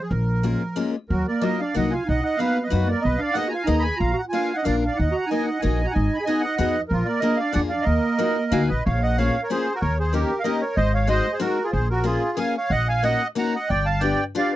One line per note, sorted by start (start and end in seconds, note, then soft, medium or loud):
0.02 0.10 F3 medium
0.02 0.11 G#4 medium
0.10 0.54 A#1 loud
0.10 0.91 F3 medium
0.10 0.90 A#4 medium
0.43 0.61 G#3 medium
0.43 0.61 A#3 soft
0.43 0.61 C#4 soft
0.43 0.62 F4 medium
0.76 0.94 G#3 medium
0.76 0.94 A#3 medium
0.76 0.95 C#4 medium
0.76 0.95 F4 medium
1.09 1.22 D#2 medium
1.09 1.27 F#3 medium
1.09 1.27 F#4 medium
1.09 1.26 A#4 medium
1.28 1.43 A#3 medium
1.28 1.42 A#4 medium
1.28 1.44 D5 medium
1.41 1.60 F#3 medium
1.41 1.60 A#3 medium
1.41 1.59 A#3 medium
1.41 1.60 D#4 soft
1.41 1.60 F4 soft
1.41 1.60 A#4 medium
1.41 1.61 D#5 medium
1.59 1.75 D4 medium
1.59 1.76 D5 medium
1.59 1.74 F5 medium
1.75 1.97 C2 medium
1.75 1.93 F#3 medium
1.75 1.93 A#3 medium
1.75 1.91 D#4 medium
1.75 1.93 D#4 soft
1.75 1.93 F4 medium
1.75 1.93 D#5 medium
1.75 1.94 F#5 medium
1.91 2.05 F4 medium
1.91 2.07 F5 medium
1.91 2.08 G#5 medium
2.06 2.20 B1 medium
2.06 2.22 D#4 medium
2.06 2.24 D#5 medium
2.06 2.22 F#5 medium
2.22 2.38 D#4 medium
2.22 2.39 D#5 medium
2.22 2.40 F#5 loud
2.37 2.57 A#3 medium
2.37 2.62 B3 medium
2.37 2.57 B3 soft
2.37 2.57 D#4 medium
2.37 2.57 F#4 medium
2.37 2.63 B4 medium
2.37 2.64 F5 loud
2.63 2.68 B3 medium
2.63 2.88 B4 medium
2.63 2.72 D#5 medium
2.69 2.93 F#2 medium
2.69 2.85 F#3 medium
2.69 2.88 A#3 medium
2.69 2.89 B3 medium
2.69 2.89 D#4 medium
2.69 2.89 F#4 medium
2.69 2.88 F#4 medium
2.86 3.01 A#3 medium
2.86 3.02 D5 medium
2.90 3.04 A#4 medium
3.01 3.16 B1 medium
3.01 3.18 B3 medium
3.01 3.20 B4 medium
3.01 3.20 D#5 medium
3.18 3.32 D4 medium
3.18 3.36 D5 medium
3.18 3.35 F5 medium
3.32 3.53 A#3 medium
3.32 3.53 B3 soft
3.32 3.46 D#4 medium
3.32 3.53 D#4 medium
3.32 3.48 D#5 medium
3.32 3.48 F#5 loud
3.37 3.53 G#4 medium
3.47 3.63 F4 medium
3.47 3.49 F#4 medium
3.47 3.67 G#5 loud
3.47 3.53 A#5 medium
3.54 3.68 F5 medium
3.63 3.85 A#3 medium
3.63 3.81 D#4 medium
3.63 3.83 D#5 medium
3.63 3.83 A#5 medium
3.67 3.89 D#2 medium
3.67 3.85 B3 medium
3.67 3.85 D#4 medium
3.67 3.85 G#4 medium
3.79 3.96 G#4 medium
3.79 3.98 G#5 medium
3.79 3.98 B5 loud
3.96 4.13 F4 medium
3.96 4.12 A#5 loud
4.00 4.12 A#1 loud
4.00 4.16 F5 medium
4.13 4.21 F#4 medium
4.13 4.21 A#5 medium
4.18 4.25 F#5 medium
4.28 4.53 F4 medium
4.28 4.57 G#5 loud
4.33 4.50 A#3 medium
4.33 4.50 D4 soft
4.33 4.51 F4 medium
4.33 4.51 A#4 medium
4.33 4.56 F5 medium
4.54 4.62 D#4 medium
4.54 4.65 D#5 medium
4.54 4.64 F#5 medium
4.62 4.83 A#3 medium
4.62 4.75 D4 medium
4.62 4.83 D4 medium
4.62 4.83 F4 soft
4.62 4.83 A#4 medium
4.62 4.76 D5 medium
4.62 4.76 F5 medium
4.67 4.88 A#1 medium
4.77 4.82 D4 medium
4.77 4.83 F5 medium
4.82 4.95 D4 medium
4.82 4.98 F5 medium
4.87 4.98 D5 medium
4.95 5.10 D#2 medium
4.95 5.11 D#4 medium
4.95 5.14 F#5 loud
5.01 5.16 D#5 medium
5.11 5.26 F#4 medium
5.11 5.30 F#5 medium
5.11 5.30 A#5 medium
5.26 5.44 D#4 medium
5.26 5.46 G#5 medium
5.31 5.48 A#3 medium
5.31 5.48 D#4 medium
5.31 5.48 F#4 soft
5.31 5.48 A#4 medium
5.31 5.46 D#5 medium
5.42 5.60 D#4 medium
5.42 5.61 F#5 medium
5.47 5.62 D#5 medium
5.59 5.80 A#3 medium
5.59 5.84 D#4 medium
5.59 5.80 D#4 medium
5.59 5.80 F#4 medium
5.59 5.80 A#4 medium
5.59 5.86 D#5 medium
5.59 5.86 G#5 medium
5.64 5.85 A#1 medium
5.84 5.93 F#4 medium
5.84 5.94 F#5 medium
5.84 5.92 A#5 medium
5.91 6.17 D#4 medium
5.91 6.17 D#5 medium
5.91 6.16 G#5 medium
5.96 6.07 G#1 loud
6.14 6.21 G#5 medium
6.14 6.24 B5 medium
6.20 6.26 G#4 medium
6.20 6.42 G#5 loud
6.25 6.44 B3 medium
6.25 6.43 D#4 medium
6.25 6.44 D#4 medium
6.25 6.44 F#4 soft
6.25 6.44 G#4 medium
6.25 6.42 D#5 medium
6.40 6.58 D#4 medium
6.40 6.58 D#5 medium
6.40 6.55 F#5 loud
6.57 6.79 F2 medium
6.57 6.75 B3 medium
6.57 6.75 D#4 medium
6.57 6.82 D#4 medium
6.57 6.75 F#4 medium
6.57 6.76 G#4 medium
6.57 6.82 D#5 medium
6.57 6.80 F#5 medium
6.88 7.02 A#1 medium
6.88 7.05 F3 medium
6.88 7.06 A#4 loud
6.93 7.07 F4 medium
7.05 7.21 A#3 medium
7.05 7.21 A#4 medium
7.05 7.20 D5 medium
7.20 7.39 A#3 medium
7.20 7.38 A#3 medium
7.20 7.39 D4 medium
7.20 7.39 F4 medium
7.20 7.39 G#4 medium
7.20 7.38 A#4 medium
7.20 7.38 D#5 loud
7.36 7.53 D4 medium
7.36 7.53 D5 medium
7.36 7.53 F5 loud
7.52 7.76 F2 medium
7.52 7.70 A#3 medium
7.52 7.70 D4 medium
7.52 7.62 D4 medium
7.52 7.71 F4 medium
7.52 7.71 G#4 medium
7.52 7.62 D5 medium
7.52 7.60 F#5 loud
7.69 7.85 D4 medium
7.69 7.85 D5 medium
7.69 7.86 F5 medium
7.82 8.63 A#4 medium
7.82 8.62 D#5 medium
7.86 7.97 D#2 medium
7.86 8.65 A#3 medium
8.18 8.36 A#3 medium
8.18 8.36 D#4 medium
8.18 8.36 F4 soft
8.18 8.36 F#4 medium
8.52 8.67 D2 medium
8.52 8.69 A#3 medium
8.52 8.69 D#4 medium
8.52 8.69 F4 medium
8.52 8.69 F#4 medium
8.52 8.68 F5 medium
8.52 8.70 G#5 medium
8.69 8.84 A#1 medium
8.69 8.84 B4 medium
8.69 8.84 D#5 medium
8.86 9.28 A#1 loud
8.86 9.01 C#5 medium
8.86 9.03 F5 medium
9.03 9.17 D#5 medium
9.03 9.18 F#5 medium
9.18 9.35 A#3 medium
9.18 9.35 C#4 medium
9.18 9.35 F4 soft
9.18 9.35 G#4 medium
9.18 9.41 C#5 medium
9.18 9.43 F5 medium
9.43 9.49 A#4 soft
9.43 9.50 C#5 medium
9.50 9.66 A#3 medium
9.50 9.66 C#4 medium
9.50 9.66 F4 medium
9.50 9.67 G#4 medium
9.50 9.73 G#4 medium
9.50 9.75 C5 medium
9.74 9.81 F#4 medium
9.74 9.79 A#4 medium
9.81 10.23 D#2 loud
9.81 9.96 A#4 medium
9.81 9.98 C#5 medium
9.99 10.12 G#4 medium
9.99 10.14 C5 medium
10.13 10.29 A#3 medium
10.13 10.29 C#4 medium
10.13 10.29 D#4 medium
10.13 10.30 G4 medium
10.13 10.39 G4 medium
10.13 10.42 A#4 medium
10.39 10.44 F5 medium
10.44 10.61 A#3 medium
10.44 10.61 C#4 medium
10.44 10.61 D#4 medium
10.44 10.61 G4 medium
10.44 10.59 A#4 medium
10.44 10.61 D#5 loud
10.61 10.75 A#4 medium
10.61 10.77 C#5 medium
10.76 11.19 G#1 loud
10.76 10.92 C5 medium
10.76 10.94 D#5 loud
10.94 11.08 C#5 medium
10.94 11.08 F5 medium
11.07 11.25 G#3 medium
11.07 11.25 C4 soft
11.07 11.25 D#4 medium
11.07 11.25 F#4 medium
11.07 11.31 C5 medium
11.07 11.34 D#5 loud
11.32 11.40 G#4 medium
11.32 11.41 C5 medium
11.40 11.57 G#3 medium
11.40 11.57 C4 medium
11.40 11.57 D#4 medium
11.40 11.63 F#4 medium
11.40 11.58 F#4 medium
11.40 11.66 A#4 medium
11.64 11.72 F4 medium
11.64 11.71 G#4 medium
11.72 12.16 A#1 medium
11.72 11.88 G#4 medium
11.72 11.88 C5 medium
11.90 12.05 F#4 medium
11.90 12.06 A#4 medium
12.04 12.22 A#3 medium
12.04 12.22 C#4 medium
12.04 12.22 F4 soft
12.04 12.36 F4 medium
12.04 12.22 G#4 medium
12.04 12.39 G#4 medium
12.37 12.55 A#3 medium
12.37 12.55 C#4 medium
12.37 12.55 F4 medium
12.37 12.55 G#4 medium
12.37 12.54 F5 medium
12.37 12.56 G#5 medium
12.57 12.71 C#5 medium
12.57 12.72 F5 medium
12.70 13.13 A#1 medium
12.70 12.87 D#5 medium
12.70 12.88 F#5 loud
12.88 13.03 F5 medium
12.88 13.04 G#5 loud
13.03 13.21 A#3 medium
13.03 13.21 C#4 medium
13.03 13.21 D#4 soft
13.03 13.21 F#4 medium
13.03 13.28 D#5 medium
13.03 13.27 F#5 loud
13.35 13.54 A#3 medium
13.35 13.54 C#4 medium
13.35 13.54 D#4 medium
13.35 13.54 F#4 medium
13.35 13.53 F#5 medium
13.35 13.55 A#5 medium
13.55 13.69 D#5 medium
13.55 13.70 F#5 medium
13.69 14.12 G1 medium
13.69 13.86 D5 medium
13.69 13.87 G5 loud
13.86 14.01 F5 medium
13.86 14.02 A5 loud
14.00 14.19 B3 soft
14.00 14.19 D4 medium
14.00 14.19 F4 medium
14.00 14.19 G4 medium
14.00 14.24 D5 medium
14.00 14.24 G5 loud
14.35 14.52 B3 medium
14.35 14.52 D4 medium
14.35 14.52 F4 medium
14.35 14.52 G4 medium
14.35 14.51 D5 medium
14.35 14.53 F5 loud
14.53 14.56 D5 medium